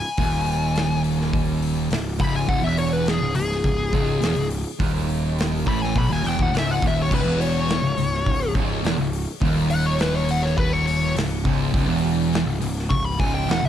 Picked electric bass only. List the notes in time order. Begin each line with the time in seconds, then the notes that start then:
0.19 D#1
1.92 C#1
2.20 C#1
2.49 C#1
2.64 E1
3.21 C#1
3.35 C#1
3.64 C#1
3.93 C#1
4.23 E1
4.37 C#1
4.80 D#1
5.67 A1
5.96 B1
6.10 D#1
6.25 E1
6.39 D#1
6.53 C#1
6.82 D#1
7.11 C#1
7.24 E1
7.82 C#1
7.97 C#1
8.27 C#1
8.55 C#1
8.83 E1
8.97 C#1
9.41 D#1
11.16 C#1
11.45 C#1
11.74 C#1
11.88 E1
12.46 C#1
12.62 C#1
12.90 C#1
13.19 C#1
13.47 E1
13.63 C#1